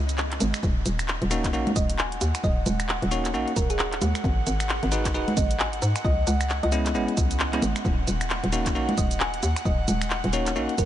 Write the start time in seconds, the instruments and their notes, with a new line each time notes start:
Already playing: fm bass C#2
0.09 closed hi-hat, shaker
0.18 clap, shaker
0.32 clap, closed hi-hat
0.40 fm bass G#1, open hi-hat, high conga, shaker
0.54 finger snap, open hi-hat, shaker
0.63 fm bass D#1, analog synth pad F#5, kick, shaker
0.86 fm bass D#1, open hi-hat, shaker
0.99 finger snap, closed hi-hat, shaker
1.08 clap, shaker
1.22 fm bass D#1, closed hi-hat
1.31 tine electric piano A#3 C#4 D#4 F#4, finger snap, open hi-hat, shaker
1.44 kick, clap, closed hi-hat, shaker
1.53 fm bass A#1, tine electric piano A#3 C#4 D#4 F#4, shaker
1.67 closed hi-hat, high conga
1.76 fm bass D#1, synth pluck D#5, kick, open hi-hat, shaker
1.90 closed hi-hat, shaker
1.99 synth pluck G#5, clap, shaker
2.12 closed hi-hat
2.21 fm bass D#2, open hi-hat, shaker
2.35 finger snap, closed hi-hat, shaker
2.44 fm bass D#1, synth pluck D#5, kick, shaker
2.66 fm bass D#1, open hi-hat, high conga, shaker
2.80 finger snap, closed hi-hat, shaker
2.89 clap, shaker
3.02 fm bass D#1, closed hi-hat
3.11 tine electric piano A#3 C#4 D#4 F#4, synth pluck C#5, open hi-hat, shaker
3.25 clap, closed hi-hat, shaker
3.34 fm bass A#1, tine electric piano A#3 C#4 D#4 F#4, shaker
3.48 closed hi-hat
3.56 fm bass D#1, synth pluck A#4, kick, open hi-hat, shaker
3.70 synth pluck G#4, closed hi-hat, shaker
3.79 clap, shaker
3.93 clap, closed hi-hat
4.02 fm bass D#2, open hi-hat, high conga, shaker
4.15 finger snap, open hi-hat, shaker
4.24 fm bass G#1, kick, shaker
4.47 fm bass G#1, open hi-hat, shaker
4.60 finger snap, closed hi-hat, shaker
4.69 clap, shaker
4.83 fm bass G#1, closed hi-hat
4.92 tine electric piano D#4 F#4 G#4 B4, finger snap, open hi-hat, shaker
5.05 kick, clap, closed hi-hat, shaker
5.14 fm bass D#1, tine electric piano D#4 F#4 G#4 B4, shaker
5.28 closed hi-hat, high conga
5.37 fm bass G#1, synth pluck D#5, kick, open hi-hat, shaker
5.51 closed hi-hat, shaker
5.59 synth pluck G#5, clap, shaker
5.73 closed hi-hat
5.82 fm bass G#2, open hi-hat, shaker
5.96 finger snap, closed hi-hat, shaker
6.04 fm bass C#2, synth pluck D#5, kick, shaker
6.27 fm bass C#2, synth pluck F#5, open hi-hat, high conga, shaker
6.41 finger snap, closed hi-hat, shaker
6.50 clap, shaker
6.63 fm bass C#2, synth pluck D#5, closed hi-hat
6.72 tine electric piano G#3 B3 C#4 E4, synth pluck D#5, open hi-hat, shaker
6.86 clap, closed hi-hat, shaker
6.95 fm bass G#1, tine electric piano G#3 B3 C#4 E4, shaker
7.08 closed hi-hat
7.17 fm bass C#2, kick, open hi-hat, shaker
7.31 closed hi-hat, shaker
7.40 clap, shaker
7.53 tine electric piano G#3 B3 C#4 E4, clap, closed hi-hat
7.62 fm bass G#1, open hi-hat, high conga, shaker
7.76 finger snap, open hi-hat, shaker
7.85 fm bass D#1, analog synth pad F#5, kick, shaker
8.07 fm bass D#1, open hi-hat, shaker
8.21 finger snap, closed hi-hat, shaker
8.30 clap, shaker
8.44 fm bass D#1, closed hi-hat
8.53 tine electric piano A#3 C#4 D#4 F#4, finger snap, open hi-hat, shaker
8.66 kick, clap, closed hi-hat, shaker
8.75 fm bass A#1, tine electric piano A#3 C#4 D#4 F#4, shaker
8.89 closed hi-hat, high conga
8.98 fm bass D#1, synth pluck D#5, kick, open hi-hat, shaker
9.11 closed hi-hat, shaker
9.20 synth pluck G#5, clap, shaker
9.34 closed hi-hat
9.43 fm bass D#2, open hi-hat, shaker
9.56 finger snap, closed hi-hat, shaker
9.65 fm bass D#1, synth pluck D#5, kick, shaker
9.88 fm bass D#1, open hi-hat, high conga, shaker
10.02 finger snap, closed hi-hat, shaker
10.10 clap, shaker
10.24 fm bass D#1, closed hi-hat
10.33 tine electric piano A#3 C#4 D#4 F#4, synth pluck C#5, open hi-hat, shaker
10.46 clap, closed hi-hat, shaker
10.56 fm bass A#1, tine electric piano A#3 C#4 D#4 F#4, shaker
10.69 closed hi-hat
10.78 fm bass D#1, synth pluck A#4, kick, open hi-hat, shaker